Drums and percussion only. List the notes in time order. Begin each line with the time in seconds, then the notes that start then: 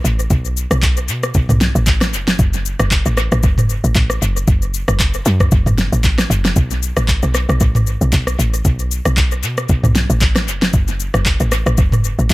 0.05 shaker
0.19 shaker
0.30 kick, shaker
0.45 shaker
0.57 shaker
0.71 cross-stick, shaker
0.82 kick, clap, shaker
0.97 shaker
1.08 shaker
1.23 cross-stick, shaker
1.34 kick, shaker
1.49 mid tom, shaker
1.61 snare, shaker
1.76 shaker
1.86 kick, clap, shaker
2.01 cross-stick, snare, shaker
2.14 shaker
2.28 snare, shaker
2.39 kick, shaker
2.54 shaker
2.66 shaker
2.80 cross-stick, shaker
2.91 kick, clap, shaker
3.06 shaker
3.17 cross-stick, shaker
3.32 cross-stick, shaker
3.43 kick, shaker
3.58 mid tom, shaker
3.69 shaker
3.84 shaker
3.95 kick, clap, shaker
4.10 cross-stick, shaker
4.22 shaker
4.37 shaker
4.48 kick, shaker
4.62 shaker
4.74 shaker
4.88 cross-stick, shaker
5.00 kick, clap, shaker
5.14 shaker
5.26 shaker
5.40 kick, cross-stick, shaker
5.51 kick, shaker
5.66 mid tom, shaker
5.78 snare, shaker
5.93 shaker
6.03 kick, clap, shaker
6.18 cross-stick, snare, shaker
6.31 shaker
6.45 snare, shaker
6.56 kick, shaker
6.71 shaker
6.83 shaker
6.97 cross-stick, shaker
7.08 kick, clap, shaker
7.23 shaker
7.34 cross-stick, shaker
7.49 cross-stick, shaker
7.60 kick, shaker
7.75 mid tom, shaker
7.87 shaker
8.01 shaker
8.12 kick, clap, shaker
8.27 cross-stick, shaker
8.40 shaker
8.54 shaker
8.65 kick, shaker
8.79 shaker
8.91 shaker
9.05 cross-stick, shaker
9.17 kick, clap, shaker
9.31 shaker
9.43 shaker
9.58 cross-stick, shaker
9.69 kick, shaker
9.84 mid tom, shaker
9.95 snare, shaker
10.10 shaker
10.21 kick, clap, shaker
10.36 cross-stick, snare, shaker
10.48 shaker
10.62 snare, shaker
10.73 kick, shaker
10.88 shaker
11.00 shaker
11.14 cross-stick, shaker
11.26 kick, clap, shaker
11.40 shaker
11.52 cross-stick, shaker
11.66 cross-stick, shaker
11.78 kick, shaker
11.92 mid tom, shaker
12.04 shaker
12.19 shaker
12.30 kick, clap, shaker